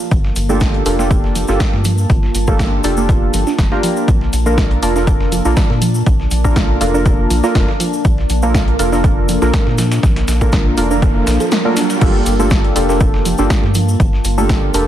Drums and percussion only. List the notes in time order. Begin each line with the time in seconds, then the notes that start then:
0.11 kick, closed hi-hat, cabasa
0.25 snare
0.36 closed hi-hat, open hi-hat, cabasa
0.49 cabasa
0.60 kick, snare, closed hi-hat, cabasa
0.74 closed hi-hat
0.86 closed hi-hat, open hi-hat, cabasa
0.99 snare, cabasa
1.11 kick, closed hi-hat, cabasa
1.24 snare
1.35 closed hi-hat, open hi-hat, cabasa
1.48 snare, cabasa
1.60 kick, snare, closed hi-hat, cabasa
1.73 snare
1.85 closed hi-hat, open hi-hat, cabasa
1.98 cabasa
2.09 kick, closed hi-hat, cabasa
2.23 snare
2.35 closed hi-hat, open hi-hat, cabasa
2.47 kick, cabasa
2.59 kick, snare, closed hi-hat, cabasa
2.84 closed hi-hat, open hi-hat, cabasa
2.97 cabasa
3.09 kick, closed hi-hat, cabasa
3.34 closed hi-hat, open hi-hat, cabasa
3.47 snare, cabasa
3.59 kick, snare, closed hi-hat, cabasa
3.72 snare
3.83 closed hi-hat, open hi-hat, cabasa
3.97 cabasa
4.08 kick, closed hi-hat, cabasa
4.21 snare
4.33 closed hi-hat, open hi-hat, cabasa
4.46 cabasa
4.58 kick, snare, closed hi-hat, cabasa
4.71 closed hi-hat
4.83 closed hi-hat, open hi-hat, cabasa
4.96 snare, cabasa
5.07 kick, closed hi-hat, cabasa
5.21 snare
5.32 closed hi-hat, open hi-hat, cabasa
5.45 snare, cabasa
5.56 kick, snare, closed hi-hat, cabasa
5.70 snare
5.82 closed hi-hat, open hi-hat, cabasa
5.94 cabasa
6.06 kick, closed hi-hat, cabasa
6.20 snare
6.31 closed hi-hat, open hi-hat, cabasa
6.44 kick, cabasa
6.56 kick, snare, closed hi-hat, cabasa
6.81 closed hi-hat, open hi-hat, cabasa
6.94 cabasa
7.06 kick, closed hi-hat, cabasa
7.30 closed hi-hat, open hi-hat, cabasa
7.44 snare, cabasa
7.55 kick, snare, closed hi-hat, cabasa
7.68 snare
7.80 closed hi-hat, open hi-hat, cabasa
7.93 cabasa
8.05 kick, closed hi-hat, cabasa
8.18 snare
8.30 closed hi-hat, open hi-hat, cabasa
8.42 cabasa
8.54 kick, snare, closed hi-hat, cabasa
8.68 closed hi-hat
8.79 closed hi-hat, open hi-hat, cabasa
8.92 snare, cabasa
9.04 kick, closed hi-hat, cabasa
9.29 closed hi-hat, open hi-hat, cabasa
9.42 snare, cabasa
9.54 kick, snare, closed hi-hat, cabasa
9.67 snare
9.78 snare, closed hi-hat, open hi-hat, cabasa
9.91 snare, closed hi-hat, cabasa
10.03 kick, snare, closed hi-hat, cabasa
10.16 snare, closed hi-hat
10.28 snare, closed hi-hat, open hi-hat, cabasa
10.41 kick, closed hi-hat, cabasa
10.52 kick, snare, closed hi-hat, cabasa
10.78 closed hi-hat, open hi-hat, cabasa
10.91 cabasa
11.02 kick, closed hi-hat, cabasa
11.27 snare, closed hi-hat, open hi-hat, cabasa
11.40 closed hi-hat, cabasa
11.51 snare, closed hi-hat, cabasa
11.77 snare, closed hi-hat, open hi-hat, cabasa
11.90 closed hi-hat, cabasa
12.01 kick, closed hi-hat, crash, cabasa
12.15 snare
12.26 closed hi-hat, open hi-hat, cabasa
12.40 cabasa
12.50 kick, snare, closed hi-hat, cabasa
12.64 closed hi-hat
12.76 closed hi-hat, open hi-hat, cabasa
12.89 snare, cabasa
13.00 kick, closed hi-hat, cabasa
13.14 snare
13.25 closed hi-hat, open hi-hat, cabasa
13.38 snare, cabasa
13.50 kick, snare, closed hi-hat, cabasa
13.64 snare
13.74 closed hi-hat, open hi-hat, cabasa
13.88 cabasa
14.00 kick, closed hi-hat, cabasa
14.13 snare
14.25 closed hi-hat, open hi-hat, cabasa
14.38 cabasa
14.49 kick, snare, closed hi-hat, cabasa
14.74 closed hi-hat, open hi-hat, cabasa